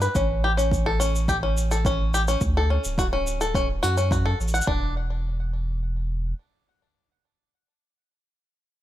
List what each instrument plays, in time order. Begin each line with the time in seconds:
0.01 five-string banjo B4, shaker
0.15 sub bass A1, five-string banjo C#4, kick, shaker
0.44 five-string banjo G4
0.57 five-string banjo C#4, shaker
0.71 kick, shaker
0.86 five-string banjo A4
1.00 five-string banjo C#4, shaker
1.15 shaker
1.28 five-string banjo G4, kick, shaker
1.43 five-string banjo C#4
1.57 shaker
1.71 five-string banjo A4, shaker
1.85 five-string banjo C#4, kick, shaker
2.14 five-string banjo G4, shaker
2.28 five-string banjo C#4, shaker
2.41 sub bass D2, kick, shaker
2.57 five-string banjo A4
2.70 five-string banjo C#4
2.84 sub bass D1, shaker
2.98 five-string banjo F#4, kick, shaker
3.13 five-string banjo C#4
3.27 shaker
3.41 five-string banjo A4, shaker
3.54 five-string banjo C#4, kick, shaker
3.83 sub bass F#2, five-string banjo F#4, shaker
3.97 five-string banjo C#4, shaker
4.11 five-string banjo F#4, kick, shaker
4.26 five-string banjo A4
4.40 sub bass A1, shaker
4.48 shaker
4.54 five-string banjo F#5, shaker
4.61 shaker
4.67 sub bass E1, five-string banjo D4, kick